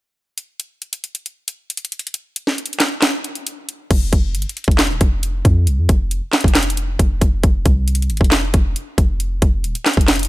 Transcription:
0.38 closed hi-hat
0.60 closed hi-hat
0.82 closed hi-hat
0.93 closed hi-hat
1.04 closed hi-hat
1.15 closed hi-hat
1.26 closed hi-hat
1.48 closed hi-hat
1.70 closed hi-hat
1.77 closed hi-hat
1.85 closed hi-hat
1.92 closed hi-hat
1.99 closed hi-hat
2.07 closed hi-hat
2.14 closed hi-hat
2.36 closed hi-hat
2.47 snare
2.58 closed hi-hat
2.66 closed hi-hat
2.73 closed hi-hat
2.80 snare, clap, closed hi-hat
3.02 snare, clap, closed hi-hat
3.24 closed hi-hat
3.35 closed hi-hat
3.47 closed hi-hat
3.69 closed hi-hat
3.91 F1, kick, closed hi-hat, crash
4.13 F1, kick, closed hi-hat
4.35 G1, closed hi-hat
4.42 closed hi-hat
4.49 closed hi-hat
4.57 closed hi-hat
4.64 F1, kick, closed hi-hat
4.71 closed hi-hat
4.78 snare, clap, closed hi-hat
4.90 D#1
5.01 F1, kick, closed hi-hat
5.23 closed hi-hat
5.45 F2, kick, closed hi-hat
5.67 C2, closed hi-hat
5.78 F2
5.89 F1, kick, closed hi-hat
6.11 closed hi-hat
6.33 snare, clap, closed hi-hat
6.41 F1, kick, closed hi-hat
6.48 closed hi-hat
6.55 snare, clap, closed hi-hat
6.63 closed hi-hat
6.70 closed hi-hat
6.77 closed hi-hat
6.99 F1, kick, closed hi-hat
7.21 F1, kick, closed hi-hat
7.43 F1, kick, closed hi-hat
7.66 C2, kick, closed hi-hat
7.88 closed hi-hat
7.95 closed hi-hat
8.02 closed hi-hat
8.10 G#1, closed hi-hat
8.17 F1, kick, closed hi-hat
8.24 closed hi-hat
8.31 snare, clap, closed hi-hat
8.54 F1, kick, closed hi-hat
8.76 closed hi-hat
8.98 F1, kick, closed hi-hat
9.20 closed hi-hat
9.42 F1, kick, closed hi-hat
9.64 D#1, closed hi-hat
9.75 closed hi-hat
9.86 snare, clap, closed hi-hat
9.94 F1, kick, closed hi-hat
10.01 closed hi-hat
10.08 snare, clap, closed hi-hat
10.14 closed hi-hat
10.16 closed hi-hat
10.19 closed hi-hat
10.23 closed hi-hat
10.25 closed hi-hat

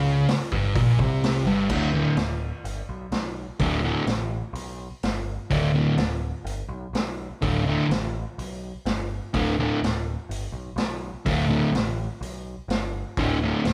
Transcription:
Already playing: C#2 C#3
0.28 muted picked electric bass stroke, muted distorted electric guitar stroke, snare, open hi-hat
0.52 G1 G2, kick
0.75 A#1 A#2, kick, open hi-hat
0.99 C2 C3, kick
1.24 snare, open hi-hat
1.45 G1 G2
1.69 D1 D2 A2 D3, kick, crash
1.93 D2 A2 D3
2.17 D1, snare, open hi-hat
2.64 G1, open hi-hat
2.89 B1
3.12 B1, snare, open hi-hat
3.59 D1 D2 A2 D3, kick, open hi-hat
3.83 D2 A2 D3
4.06 A1, snare, open hi-hat
4.53 B1, open hi-hat
5.03 G1, snare, open hi-hat
5.51 D1 D2 A2 D3, kick, open hi-hat
5.74 D2 A2 D3
5.97 D1, snare, open hi-hat
6.45 G1, open hi-hat
6.69 B1
6.93 B1, snare, open hi-hat
7.42 D1 D2 A2 D3, kick, open hi-hat
7.66 D2 A2 D3
7.89 A1, snare, open hi-hat
8.38 B1, open hi-hat
8.86 G1, snare, open hi-hat
9.34 D1 D2 A2 D3, kick, open hi-hat
9.59 D2 A2 D3
9.82 D1, snare, open hi-hat
10.29 G1, open hi-hat
10.52 B1
10.76 B1, snare, open hi-hat
11.25 D1 D2 A2 D3, kick, open hi-hat
11.49 D2 A2 D3
11.73 A1, snare, open hi-hat
12.21 B1, open hi-hat
12.68 G1, snare, open hi-hat
13.17 D1 D2 A2 D3, kick, open hi-hat
13.43 D2 A2 D3
13.65 D1, snare, open hi-hat

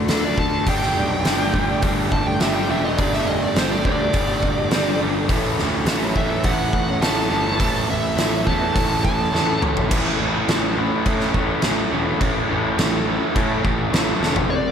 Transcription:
Already playing: D3 A3 D4 F#4
0.08 D2 D3 A3 D4 A4, snare, open hi-hat
0.23 D5, muted steel-string acoustic guitar stroke
0.38 D2 D3 A3 D4 A5, kick
0.66 G1 G2 D3 G3 A3 D4 G4 G5, kick, open hi-hat
0.81 muted steel-string acoustic guitar stroke, snare
0.96 B1 G3 A3 D4 G4
1.24 G1 G2 D3 G3 A3 D4 G4, muted steel-string acoustic guitar stroke, snare, open hi-hat
1.39 G3 A3 D4 G4
1.53 G1 G2 D3 G3 A3 D4 G4, kick
1.68 G3 A3 D4 G4
1.82 G1 G2 D3 G3 A3 D4 G4, muted steel-string acoustic guitar stroke, kick, open hi-hat
2.12 G1 A5, kick
2.26 G3 A3 D4 G4 G5
2.40 G1 G2 D3 G3 A3 D4 G4 E5, snare, open hi-hat
2.55 G5, muted steel-string acoustic guitar stroke
2.68 E1 G2 D3 G3 A3 D4 G4 E5
2.85 D#5
2.98 G1 G2 D3 G3 A3 D4 G4 D5, kick, open hi-hat
3.13 E5, muted steel-string acoustic guitar stroke, snare
3.26 G1 G3 A3 D4 G4 D#5
3.44 D5
3.56 G1 G2 D3 G3 A3 D4 G4 C5, snare, open hi-hat
3.70 G3 A3 D4 G4 D5
3.85 D2 G2 D3 G3 A3 D4 G4 D5, kick
4.00 G3 A3 D4 G4
4.13 G1 G2 D3 G3 A3 D4 G4, muted steel-string acoustic guitar stroke, kick, open hi-hat
4.43 G1, kick
4.58 G3 A3 D4 G4
4.71 G1 G2 D3 G3 A3 D4 G4, snare, open hi-hat
4.87 muted steel-string acoustic guitar stroke
5.00 G1 G2 D3 G3 A3 D4 G4
5.29 A1 A2 E3 A3 C#4 E4, kick, open hi-hat
5.44 muted steel-string acoustic guitar stroke
5.58 D2 E3 B3 C#4 E4, snare
5.86 A1 A2 E3 A3 C#4 E4, muted steel-string acoustic guitar stroke, snare, open hi-hat
6.01 E3 B3 C#4 E4
6.15 A1 A2 E3 A3 C#4 E4 E5, kick
6.30 E3 B3 C#4 E4
6.43 A1 A2 E3 A3 C#4 E4 F#5, muted steel-string acoustic guitar stroke, kick, open hi-hat
6.73 A1, kick
6.88 E3 B3 C#4 E4
7.00 A1 A2 E3 A3 C#4 E4 A5, snare, open hi-hat
7.17 muted steel-string acoustic guitar stroke
7.29 G1 A2 E3 A3 C#4 E4
7.58 A1 A2 E3 A3 C#4 E4, kick, open hi-hat
7.74 muted steel-string acoustic guitar stroke
7.87 A1 E3 B3 C#4 E4 E5
8.16 A1 A2 E3 A3 C#4 E4, muted steel-string acoustic guitar stroke, snare, open hi-hat
8.31 E3 B3 C#4 E4
8.45 E2 A2 E3 A3 C#4 E4 A5, kick
8.60 E3 B3 C#4 E4
8.74 A1 A2 E3 A3 C#4 E4, muted steel-string acoustic guitar stroke, kick, open hi-hat
9.04 A1 A5, kick
9.19 E3 B3 C#4 E4
9.32 A1 A2 E3 A3 C#4 E4, snare
9.48 muted steel-string acoustic guitar stroke
9.61 A1 A2 E3 A3 C#4 E4, mid tom
9.77 floor tom
9.89 A1 A2 E3 A3 C#4 E4, kick, crash
10.18 A1 A2 E3 A3 C#4 E4
10.47 A1 A2 E3 A3 C#4 E4, snare, crash
10.77 A2 E3 A3 C#4 E4
11.06 A2 E3 A3 C#4 E4, kick, crash
11.20 snare
11.34 A1 A2 E3 A3 C#4 E4, kick
11.62 A1 A2 E3 A3 C#4 E4, snare, crash
11.91 E1 A2 E3 A3 C#4 E4
12.19 A1 A2 E3 A3 C#4 E4, kick, crash
12.49 A1 A2 E3 A3 C#4 E4
12.78 A1 A2 E3 A3 C#4 E4, snare, crash
13.06 A2 E3 A3 C#4 E4
13.34 A2 E3 A3 C#4 E4, kick, crash
13.63 A1 A2 E3 A3 C#4 E4, kick
13.92 A1 A2 E3 A3 C#4 E4, snare, crash
14.20 E1 A2 E3 A3 C#4 E4, snare
14.36 floor tom
14.48 C3 G3 C4 D5

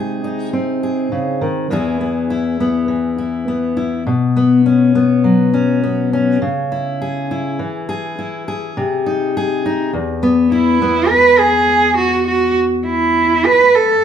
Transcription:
Already playing: C3 G#3 D#4 G#4
0.24 D#4
0.53 C4
0.83 G#4
1.12 C#3
1.41 D#3
1.70 E2 E3 B3 E4 G#4
2.01 B3
2.30 E4
2.60 B3
2.88 E3
3.18 E4
3.48 B3
3.77 E4
4.07 B2
4.37 B3
4.66 C#4
4.95 B3
5.24 F#3
5.54 C#4
5.84 B3
6.13 C#4
6.42 C#3
6.72 E4
7.02 G#4
7.31 E4
7.59 E3
7.89 G#4
8.19 E4
8.48 G#4
8.77 C3
9.06 D#4
9.37 G#4
9.66 D#4
9.93 E2
10.23 B3
10.52 E4
10.82 B3
11.10 B4
11.39 G#4
11.97 F#4
12.28 F#4
12.87 E4
13.45 B4
13.75 A4

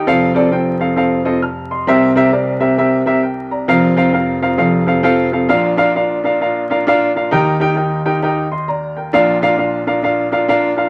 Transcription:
0.07 F1 F2 C4 F4 A4 F5
0.34 C4 F4 A4 D5
0.51 C4 F4 A4 G5
0.80 C4 F4 A4 F5
0.96 C4 F4 A4 F5
1.25 C4 F4 A4 D#5
1.42 A5 F6
1.71 D#5 C6
1.87 C2 C3 C4 G4 A#4 E5
2.15 C4 G4 A#4 E5
2.32 C4 G4 A#4 D5
2.60 C4 G4 A#4 E5
2.78 C4 G4 A#4 E5
3.06 C4 G4 A#4 E5
3.23 A#4 G5
3.51 D5 A#5
3.68 F1 F2 C4 F4 A#4 F5
3.96 C4 F4 A#4 F5
4.13 C4 F4 A#4 F5
4.42 C4 F4 A#4 F5
4.58 F1 F2 C4 F4 A4 F5
4.86 C4 F4 A4 F5
5.03 C4 F4 A4 F5
5.32 C4 F4 A4 F5
5.49 A#1 A#2 D4 F4 A#4 F5
5.77 D4 F4 A#4 F5
5.95 D4 F4 A#4 F5
6.24 D4 F4 A#4 F5
6.41 D4 F4 A#4 F5
6.70 D4 F4 A#4 F5
6.87 D4 F4 A#4 F5
7.15 D4 F4 A#4 F5
7.31 D#2 D#3 D#4 G4 A#4 G5
7.60 D#4 G4 A#4 G5
7.76 D#4 G4 A#4 G5
8.05 D#4 G4 A#4 G5
8.23 D#4 G4 A#4 G5
8.52 D#5 C6
8.68 D5 A#5
8.97 A#4 G5
9.13 A#1 A#2 D4 F4 A#4 F5
9.42 D4 F4 A#4 F5
9.57 D4 F4 A#4 F5
9.87 D4 F4 A#4 F5
10.03 D4 F4 A#4 F5
10.32 D4 F4 A#4 F5
10.48 D4 F4 A#4 F5
10.76 D4 F4 A#4 F5

